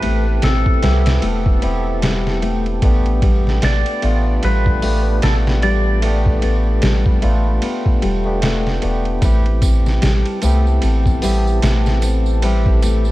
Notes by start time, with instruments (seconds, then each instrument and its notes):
Already playing: sub bass A1, tine electric piano B3 C4 E4 G4 B4, ambient pad A4 G5 A5, electric slide guitar B4
0.02 nylon-string guitar A3, ride
0.42 sub bass A1, nylon-string guitar C4, electric slide guitar A4, snare, ride
0.66 kick
0.82 sub bass C2, nylon-string guitar G3, tine electric piano B3 C4 E4 G4, snare, ride
1.06 snare, ride
1.22 sub bass E1, nylon-string guitar A3, ride
1.46 kick
1.62 sub bass E1, tine electric piano B3 C4 E4 G4, nylon-string guitar C4, ride
2.02 nylon-string guitar G3, snare, ride
2.27 snare
2.42 nylon-string guitar A3, ride
2.66 ride
2.82 sub bass A1, tine electric piano A3 B3 D4, nylon-string guitar B3, ambient pad A4 B5, kick, ride
2.86 tine electric piano G4
3.06 ride
3.22 nylon-string guitar G3, kick, ride
3.47 snare
3.62 sub bass A1, nylon-string guitar A3, electric slide guitar D5, snare, ride
3.86 ride
4.02 sub bass A1, tine electric piano A3 B3 D4 F4, nylon-string guitar B3, ride
4.43 sub bass A1, nylon-string guitar G3, electric slide guitar B4, ride
4.66 kick
4.82 tine electric piano A3 B3 D4 G4, nylon-string guitar A3, open hi-hat
5.22 sub bass A1, nylon-string guitar B3, electric slide guitar A4, snare, ride
5.47 snare
5.62 nylon-string guitar G3, electric slide guitar D5, ride
6.01 tine electric piano A3 B3 D4, nylon-string guitar A3, ride
6.06 tine electric piano G4
6.26 kick
6.42 nylon-string guitar B3, ride
6.82 sub bass A1, nylon-string guitar G3, snare, ride
7.06 kick
7.22 sub bass A1, tine electric piano A3 B3 D4 F4, nylon-string guitar A3, ride
7.62 nylon-string guitar B3, ride
7.86 kick
8.02 sub bass E1, nylon-string guitar G3, ride
8.25 tine electric piano A3 B3 D4 G4
8.42 nylon-string guitar A3, snare, ride
8.67 snare
8.82 sub bass E1, tine electric piano A3 B3 D4 G4, nylon-string guitar B3, ride
9.05 ride
9.21 sub bass A1, nylon-string guitar A3, tine electric piano C4 E4 B4, ambient pad A4 A5, kick, ride, tambourine
9.25 tine electric piano G4
9.46 ride
9.62 nylon-string guitar C4, kick, ride, tambourine
9.86 snare, tambourine
10.02 sub bass A1, nylon-string guitar G3, snare, ride, tambourine
10.26 ride
10.42 sub bass C2, nylon-string guitar A3, tine electric piano B3 C4 E4 G4, ride, tambourine
10.67 tambourine
10.82 sub bass A1, nylon-string guitar C4, ride, tambourine
11.06 kick, tambourine
11.22 nylon-string guitar G3, tine electric piano B3 C4 E4 G4, open hi-hat, tambourine
11.47 tambourine
11.62 sub bass A1, nylon-string guitar A3, snare, ride, tambourine
11.86 snare, tambourine
12.02 nylon-string guitar C4, ride, tambourine
12.26 tambourine
12.42 nylon-string guitar G3, tine electric piano C4 E4 G4 B4, ride, tambourine
12.66 kick
12.82 nylon-string guitar A3, ride, tambourine
13.05 tambourine